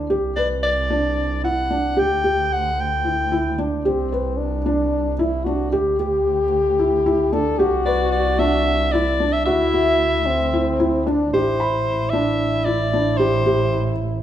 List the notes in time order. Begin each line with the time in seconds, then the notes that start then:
Already playing: D2
0.10 C2 G4
0.36 B4 D5
0.63 D5
0.90 D4
1.44 E4 F#5
1.70 D4
1.97 D2 G4 G5
2.24 G4
2.53 F#5
2.81 G5
3.05 E4
3.32 E4
3.58 D4
3.85 C2 C4 G4
4.12 B4
4.37 D4
4.66 D4
5.19 E4
5.45 D4 F#4
5.71 D2 G4
6.00 G4
6.79 E4
7.06 E4
7.32 D4 A4
7.59 C2 F#4 G4
7.86 B4 D5
8.12 D5
8.39 D4 E5
8.92 E4 D5
9.20 D4
9.33 E5
9.46 D2 E4 F#4 E5
9.74 F#4
10.26 C4
10.53 E4
10.80 E4
11.06 D4
11.32 A1 E4 G4 C5
11.60 B5
12.10 D4 E5
12.65 E4 D5
12.93 D4
13.17 G4 C5
13.46 G4